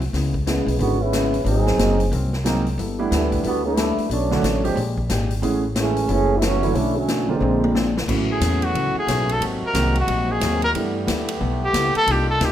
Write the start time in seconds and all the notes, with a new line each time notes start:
Already playing: C2
0.01 open hi-hat
0.13 C#2 C#3 G#3 B3 E4, snare, open hi-hat
0.34 kick
0.46 C#3 E3 G#3 B3 E4, snare, closed hi-hat
0.66 B1, open hi-hat
0.79 G#1 C#3 D3 G#3 B3 E4 F#4, open hi-hat
1.00 G#3 B3 C#4 E4
1.13 C#3 G#3 B3 E4, snare, closed hi-hat
1.34 open hi-hat
1.44 G#1 G#2 F#3 A#3 C4 D#4 G#4, open hi-hat
1.67 snare
1.78 F#1 G#2 F#3 G#3 A#3 C4 D#4, snare, closed hi-hat
2.00 open hi-hat
2.11 C2 G#2 F#3 A#3 C4, open hi-hat
2.33 snare
2.44 G#2 F#3 G#3 A#3 C4 D#4, snare, closed hi-hat
2.66 open hi-hat
2.78 G1 G3 B3 E4 A4, open hi-hat
2.99 G3 A3 B3 D4 E4
3.11 D2 D3 E3 G3 A3 B3 E4 A4, snare, closed hi-hat
3.32 kick, open hi-hat
3.44 D2 D3 G3 B3 E4 F#4 A4, open hi-hat
3.64 A3 B3 D4 E4
3.77 G3 B3 E4 A4, snare, closed hi-hat
3.97 muted upright bass stroke, open hi-hat
4.10 B1 F#3 A3 B3 C#4 D4 A4 C#5, open hi-hat
4.31 D3 A3 B3 C#4 F#4, snare
4.42 A1 B3 D4 A4 C#5, snare, closed hi-hat
4.64 F3 G#3 C4 D4 G4, open hi-hat
4.76 A#1 A#2 G#3 D4, open hi-hat
4.80 G4
4.98 kick
5.09 G#1 A#2 G#3 D4 G4, snare, closed hi-hat
5.30 open hi-hat
5.42 A1 A2 E3 G#3 A3 B3 C#4 E4 G#4, open hi-hat
5.76 A2 E3 G#3 A3 C#4 E4, snare, closed hi-hat
5.96 open hi-hat
6.08 F#1 E3 F#3 A3 B3 C#4 E4 G#4 A4, open hi-hat
6.37 E4
6.41 E3 F#3 A3 B3 C#4 E4 F#4 A4, snare, closed hi-hat
6.62 D3 F#3 A3 C#4 E4, open hi-hat
6.74 B1 B2 E3 A3 C#4 D4 E4, open hi-hat
6.97 D3 F#3 A3 C#4
7.08 B2 E3 A3 D4, snare, closed hi-hat
7.28 D3 F3 G#3 A#3 C4 F4
7.40 A#1 A#2 G#3 C4 D4, mid tom
7.64 mid tom
7.74 A#2 G#3 C4 D4, snare
7.97 snare
8.07 A1 A2 C#3 E3 F#3 A3 B3 C#4 F#4, kick, crash
8.32 G#4
8.40 E2 A2 F#3 B3 C#4, snare, hi-hat pedal, ride
8.62 F#4, ride
8.73 C#2 A2 F#3 B3 C#4, ride
8.94 muted upright bass stroke
8.99 G#4
9.07 B1 A2 F#3 B3 C#4, snare, hi-hat pedal, ride
9.29 A4, ride
9.40 G#1 G#2 C3 F#3 G#3 A#3 C4, ride
9.62 muted upright bass stroke
9.66 A#4
9.74 C2 G#2 D#3 F#3 G#3 A#3 C4 F#4, snare, hi-hat pedal, ride
9.95 ride
10.00 F#4
10.07 A#1 G#2 F#3 A#3 C4, ride
10.32 G#4
10.40 D#2 G#2 F#3 A#3 C4, snare, hi-hat pedal, ride
10.62 A#4, ride
10.74 G2 E3 G3 A3 B3 D4 E4 G4 A4, ride
11.07 D2 G3 B3 E4 A4, snare, hi-hat pedal, ride
11.28 ride
11.39 B1 G3 B3 E4 A4
11.64 G4
11.73 C#2 G3 B3 E4 A4, snare, hi-hat pedal, ride
11.95 A4, muted upright bass stroke, ride
12.06 C2 C3 A#3 D4 D#4 F4, ride
12.12 G4
12.30 A4
12.40 D2 C3 A#3 D#4 F4, snare, hi-hat pedal, ride
12.45 G4